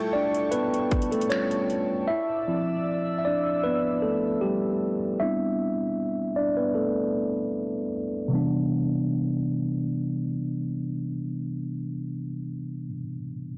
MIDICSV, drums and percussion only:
0, 0, Header, 1, 2, 480
1, 0, Start_track
1, 0, Tempo, 779221
1, 1283, Time_signature, 4, 2, 24, 8
1, 8364, End_track
2, 0, Start_track
2, 0, Title_t, "Drums"
2, 213, Note_on_c, 9, 42, 43
2, 274, Note_off_c, 9, 42, 0
2, 319, Note_on_c, 9, 42, 67
2, 380, Note_off_c, 9, 42, 0
2, 454, Note_on_c, 9, 42, 45
2, 516, Note_off_c, 9, 42, 0
2, 563, Note_on_c, 9, 42, 63
2, 564, Note_on_c, 9, 36, 102
2, 624, Note_off_c, 9, 42, 0
2, 625, Note_off_c, 9, 36, 0
2, 627, Note_on_c, 9, 42, 62
2, 689, Note_off_c, 9, 42, 0
2, 692, Note_on_c, 9, 42, 65
2, 748, Note_off_c, 9, 42, 0
2, 748, Note_on_c, 9, 42, 61
2, 802, Note_off_c, 9, 42, 0
2, 802, Note_on_c, 9, 42, 61
2, 812, Note_on_c, 9, 26, 105
2, 864, Note_off_c, 9, 42, 0
2, 874, Note_off_c, 9, 26, 0
2, 931, Note_on_c, 9, 42, 52
2, 992, Note_off_c, 9, 42, 0
2, 1046, Note_on_c, 9, 42, 59
2, 1108, Note_off_c, 9, 42, 0
2, 8364, End_track
0, 0, End_of_file